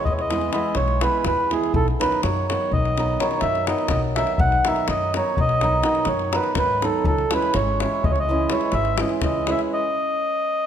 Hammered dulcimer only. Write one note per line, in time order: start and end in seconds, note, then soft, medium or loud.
0.00 0.29 E3 soft
0.00 0.29 G#3 soft
0.30 0.51 E3 medium
0.30 0.51 G#3 medium
0.30 0.49 B3 medium
0.30 0.49 E4 medium
0.52 1.00 E3 medium
0.52 1.01 G#3 medium
0.52 0.71 B3 medium
0.52 0.71 E4 medium
1.01 1.49 E3 medium
1.01 1.50 G#3 medium
1.01 1.20 B3 medium
1.01 1.21 E4 medium
1.50 1.78 E3 soft
1.50 1.78 G#3 soft
1.50 1.70 B3 medium
1.50 1.70 E4 medium
2.00 2.48 D#3 medium
2.00 2.49 F#3 medium
2.00 2.19 B3 medium
2.00 2.19 D#4 medium
2.49 2.97 D#3 medium
2.49 2.97 F#3 soft
2.49 2.69 B3 soft
2.49 2.69 D#4 medium
2.98 3.19 D#3 medium
2.98 3.19 F#3 medium
2.98 3.16 B3 medium
2.98 3.16 D#4 medium
3.20 3.66 D#3 medium
3.20 3.66 F#3 medium
3.20 3.38 B3 medium
3.20 3.38 D#4 medium
3.67 4.16 D#3 medium
3.67 4.16 F#3 medium
3.67 3.86 B3 medium
3.67 3.87 D#4 medium
4.17 4.65 D#3 medium
4.17 4.66 F#3 soft
4.17 4.36 B3 soft
4.17 4.36 D#4 medium
4.66 5.13 D#3 medium
4.66 5.14 F#3 soft
4.66 4.85 B3 medium
4.66 4.85 D#4 medium
5.14 5.60 D#3 soft
5.14 5.61 F#3 soft
5.14 5.34 B3 soft
5.14 5.34 D#4 medium
5.62 5.81 D#3 medium
5.62 5.82 F#3 medium
5.62 5.81 B3 medium
5.62 5.81 D#4 medium
5.83 6.31 D#3 medium
5.83 6.32 F#3 medium
5.83 6.02 B3 medium
5.83 6.03 D#4 medium
6.32 6.81 D#3 medium
6.32 6.82 F#3 medium
6.32 6.52 B3 medium
6.32 6.52 D#4 medium
6.82 7.10 D#3 medium
6.82 7.10 F#3 soft
6.82 7.01 B3 medium
6.82 7.02 D#4 medium
7.31 7.79 E3 medium
7.31 7.79 G#3 medium
7.31 7.51 C#4 medium
7.31 7.51 E4 medium
7.80 8.28 E3 medium
7.80 8.28 G#3 soft
7.80 8.00 C#4 soft
7.80 8.00 E4 medium
8.29 8.49 E3 medium
8.29 8.50 G#3 medium
8.29 8.47 C#4 medium
8.29 8.48 E4 medium
8.50 8.98 E3 medium
8.50 8.99 G#3 medium
8.50 8.69 C#4 medium
8.50 8.69 E4 medium
8.99 9.46 E3 medium
8.99 9.46 G#3 medium
8.99 9.18 C#4 soft
8.99 9.18 E4 medium
9.47 9.76 E3 medium
9.47 9.76 G#3 medium
9.47 9.67 C#4 medium
9.47 9.67 E4 medium